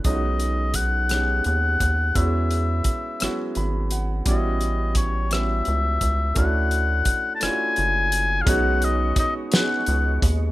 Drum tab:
HH |xxxxxx|xxxxxx|xxxxxx|xxxxxx|
SD |---r--|---r--|---r--|---r--|
BD |o-o--o|o-o---|o-o--o|o-o---|

HH |xxxxxx|
SD |---o--|
BD |o-o--o|